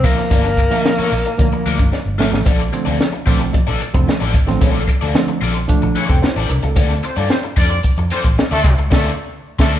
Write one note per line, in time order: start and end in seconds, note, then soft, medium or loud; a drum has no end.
0.03 0.16 A#1 medium
0.03 0.35 A#2 medium
0.03 0.35 D3 medium
0.03 0.35 F3 medium
0.03 0.35 A#3 loud
0.03 2.20 A#3 medium
0.03 0.15 D4 medium
0.03 0.15 F4 medium
0.03 0.16 A#4 medium
0.03 0.16 E5 medium
0.03 kick loud
0.03 closed hi-hat medium
0.18 muted overdriven electric guitar stroke soft
0.18 snare soft
0.18 closed hi-hat soft
0.31 0.67 G1 medium
0.31 0.45 D4 medium
0.31 0.45 F4 medium
0.31 0.45 A#4 medium
0.31 0.44 D5 medium
0.31 kick loud
0.31 closed hi-hat medium
0.45 muted overdriven electric guitar stroke soft
0.45 snare soft
0.45 closed hi-hat soft
0.57 muted overdriven electric guitar stroke soft
0.57 kick medium
0.57 closed hi-hat medium
0.70 1.02 A#2 medium
0.70 1.02 D3 medium
0.70 1.02 F3 medium
0.70 1.02 A#3 loud
0.70 0.84 D4 medium
0.70 0.83 F4 medium
0.70 0.83 A#4 medium
0.70 0.83 E5 medium
0.70 closed hi-hat medium
0.85 muted overdriven electric guitar stroke soft
0.85 snare loud
0.98 1.11 D4 medium
0.98 1.12 F4 medium
0.98 1.12 A#4 medium
0.98 1.13 D5 medium
0.98 muted fingered electric bass stroke soft
0.98 closed hi-hat soft
1.12 1.24 A#1 medium
1.12 muted overdriven electric guitar stroke soft
1.12 open hi-hat medium
1.26 muted overdriven electric guitar stroke soft
1.26 closed hi-hat soft
1.38 1.51 D2 medium
1.38 1.75 A#2 medium
1.38 1.75 D3 medium
1.38 1.75 F3 medium
1.38 1.75 A#3 loud
1.38 muted overdriven electric guitar stroke soft
1.38 kick medium
1.38 closed hi-hat medium
1.52 muted overdriven electric guitar stroke soft
1.52 closed hi-hat soft
1.65 1.77 D2 medium
1.65 1.80 D4 medium
1.65 1.79 F4 medium
1.65 1.78 A#4 medium
1.65 1.78 D5 medium
1.65 closed hi-hat medium
1.79 1.91 G1 medium
1.79 muted overdriven electric guitar stroke soft
1.79 kick medium
1.79 closed hi-hat soft
1.92 muted overdriven electric guitar stroke soft
1.92 snare medium
2.06 2.19 G1 medium
2.18 2.31 G#1 medium
2.18 2.46 A#2 loud
2.18 2.46 D3 medium
2.18 2.46 F3 medium
2.18 2.46 A3 loud
2.18 2.30 D4 medium
2.18 2.30 F4 medium
2.18 2.30 A#4 medium
2.18 2.31 E5 medium
2.18 snare loud
2.32 2.45 A1 medium
2.32 muted overdriven electric guitar stroke soft
2.32 snare medium
2.45 2.70 A#1 loud
2.45 2.60 C4 medium
2.45 2.60 F4 medium
2.45 2.60 A4 medium
2.45 2.61 D5 medium
2.45 kick loud
2.45 closed hi-hat medium
2.60 closed hi-hat soft
2.72 2.97 D3 medium
2.72 2.98 F3 medium
2.72 2.98 A3 medium
2.72 2.98 C4 medium
2.72 muted overdriven electric guitar stroke soft
2.72 closed hi-hat medium
2.85 2.98 D2 medium
2.85 2.98 C4 medium
2.85 2.97 F4 medium
2.85 2.97 A4 medium
2.85 2.97 D5 medium
2.85 closed hi-hat soft
2.99 muted overdriven electric guitar stroke soft
2.99 snare loud
3.12 muted overdriven electric guitar stroke soft
3.12 closed hi-hat soft
3.26 3.51 A#1 medium
3.26 3.57 D3 medium
3.26 3.57 F3 medium
3.26 3.58 A3 medium
3.26 3.40 C4 medium
3.26 3.58 C4 medium
3.26 3.40 F4 medium
3.26 3.40 A4 medium
3.26 3.39 D5 medium
3.26 kick medium
3.26 open hi-hat medium
3.40 muted overdriven electric guitar stroke soft
3.40 closed hi-hat soft
3.53 muted overdriven electric guitar stroke soft
3.53 muted fingered electric bass stroke soft
3.53 kick medium
3.53 closed hi-hat medium
3.67 3.79 A#1 medium
3.67 3.79 C4 medium
3.67 3.79 F4 medium
3.67 3.80 A4 medium
3.67 3.81 D5 medium
3.67 closed hi-hat soft
3.80 muted overdriven electric guitar stroke soft
3.80 closed hi-hat medium
3.93 4.06 F1 medium
3.93 4.18 D3 medium
3.93 4.19 F3 medium
3.93 4.19 A3 medium
3.93 4.19 C4 loud
3.93 muted overdriven electric guitar stroke soft
3.93 kick loud
3.93 closed hi-hat soft
4.08 muted overdriven electric guitar stroke soft
4.08 snare loud
4.20 4.34 A1 medium
4.20 4.32 C4 medium
4.20 4.33 F4 medium
4.20 4.34 A4 medium
4.20 4.34 D5 medium
4.20 closed hi-hat soft
4.33 4.46 G#1 medium
4.33 muted overdriven electric guitar stroke soft
4.33 kick medium
4.33 closed hi-hat medium
4.47 4.60 A1 medium
4.47 4.78 D3 loud
4.47 4.79 F3 medium
4.47 4.79 A3 medium
4.47 4.79 C4 loud
4.47 muted overdriven electric guitar stroke soft
4.47 snare soft
4.47 closed hi-hat soft
4.61 4.85 A#1 loud
4.61 4.81 C4 medium
4.61 4.82 F4 medium
4.61 4.82 A4 medium
4.61 4.82 D5 medium
4.61 kick loud
4.61 closed hi-hat medium
4.75 closed hi-hat soft
4.88 muted overdriven electric guitar stroke soft
4.88 kick medium
4.88 closed hi-hat medium
5.01 5.14 D2 medium
5.01 5.13 C4 medium
5.01 5.13 F4 medium
5.01 5.13 A4 medium
5.01 5.12 D5 medium
5.01 closed hi-hat medium
5.15 5.40 D3 loud
5.15 5.40 F3 medium
5.15 5.40 A3 medium
5.15 5.40 C4 loud
5.15 muted overdriven electric guitar stroke soft
5.15 snare loud
5.28 muted overdriven electric guitar stroke soft
5.28 closed hi-hat soft
5.41 5.66 A#1 medium
5.41 5.55 C4 medium
5.41 5.56 F4 medium
5.41 5.55 A4 medium
5.41 5.54 D5 medium
5.41 open hi-hat medium
5.55 muted overdriven electric guitar stroke medium
5.55 closed hi-hat soft
5.68 5.99 D3 loud
5.68 6.00 F3 medium
5.68 6.00 A3 medium
5.68 5.96 D4 loud
5.68 muted fingered electric bass stroke soft
5.68 kick medium
5.68 closed hi-hat medium
5.82 5.94 A#1 medium
5.82 muted overdriven electric guitar stroke soft
5.82 closed hi-hat soft
5.96 6.16 C4 medium
5.96 6.09 F4 medium
5.96 6.09 A4 medium
5.96 6.08 D5 medium
5.96 closed hi-hat medium
6.09 6.21 F1 medium
6.09 6.22 C4 medium
6.09 6.22 A4 medium
6.09 muted overdriven electric guitar stroke soft
6.09 kick medium
6.09 closed hi-hat medium
6.22 6.48 E4 medium
6.22 6.48 C5 medium
6.22 muted overdriven electric guitar stroke soft
6.22 snare loud
6.36 6.48 A1 medium
6.36 6.48 C4 medium
6.36 6.49 F4 medium
6.36 6.50 A4 medium
6.36 6.50 D5 medium
6.49 6.62 C2 medium
6.49 6.63 D4 medium
6.49 6.62 A#4 medium
6.49 muted overdriven electric guitar stroke soft
6.49 closed hi-hat medium
6.63 6.75 C#2 medium
6.63 6.76 C4 soft
6.63 6.76 A4 medium
6.63 muted overdriven electric guitar stroke medium
6.63 closed hi-hat soft
6.76 7.00 D2 loud
6.76 6.90 C4 medium
6.76 6.91 F4 medium
6.76 6.91 A4 medium
6.76 6.91 D5 medium
6.76 kick loud
6.76 closed hi-hat medium
6.90 snare soft
6.90 closed hi-hat soft
7.03 7.14 C4 medium
7.03 7.14 C5 medium
7.03 muted overdriven electric guitar stroke medium
7.03 closed hi-hat medium
7.16 7.29 G2 medium
7.16 7.29 C4 medium
7.16 7.28 D4 medium
7.16 7.28 F4 medium
7.16 7.28 A4 medium
7.16 7.28 D5 medium
7.16 closed hi-hat medium
7.30 7.38 C4 medium
7.30 7.38 C5 medium
7.30 muted overdriven electric guitar stroke soft
7.30 snare loud
7.43 muted overdriven electric guitar stroke soft
7.43 closed hi-hat soft
7.56 7.81 F2 medium
7.56 7.71 C4 medium
7.56 7.79 D4 medium
7.56 7.71 F4 medium
7.56 7.70 A4 medium
7.56 7.79 D5 loud
7.56 7.69 D5 loud
7.56 kick medium
7.56 open hi-hat medium
7.70 muted overdriven electric guitar stroke soft
7.70 closed hi-hat medium
7.83 muted fingered electric bass stroke soft
7.83 kick medium
7.83 closed hi-hat medium
7.97 8.10 F2 medium
7.97 muted overdriven electric guitar stroke soft
7.97 closed hi-hat soft
8.10 8.19 C4 medium
8.10 8.25 C4 medium
8.10 8.25 F4 medium
8.10 8.24 A4 medium
8.10 8.19 C5 loud
8.10 8.24 D5 loud
8.10 closed hi-hat medium
8.24 8.36 A1 medium
8.24 muted overdriven electric guitar stroke medium
8.24 kick medium
8.24 closed hi-hat medium
8.38 muted overdriven electric guitar stroke soft
8.38 snare loud
8.51 8.63 D2 medium
8.51 8.73 A3 loud
8.51 8.63 C4 medium
8.51 8.64 F4 medium
8.51 8.64 A4 medium
8.51 8.74 A4 loud
8.51 8.65 D5 medium
8.51 closed hi-hat soft
8.64 8.77 C2 loud
8.64 muted overdriven electric guitar stroke soft
8.64 kick loud
8.64 closed hi-hat medium
8.78 8.90 C#2 medium
8.78 muted overdriven electric guitar stroke soft
8.78 closed hi-hat soft
8.91 9.10 D2 loud
8.91 9.07 A3 loud
8.91 9.10 C4 loud
8.91 9.10 F4 loud
8.91 9.10 A4 loud
8.91 9.06 A4 loud
8.91 9.11 D5 loud
8.91 kick loud
8.91 snare loud
8.91 crash medium
9.59 9.78 D2 loud
9.59 9.73 A3 loud
9.59 9.77 C4 loud
9.59 9.78 F4 loud
9.59 9.73 A4 medium
9.59 9.78 A4 loud
9.59 9.79 D5 loud
9.59 kick medium
9.59 snare loud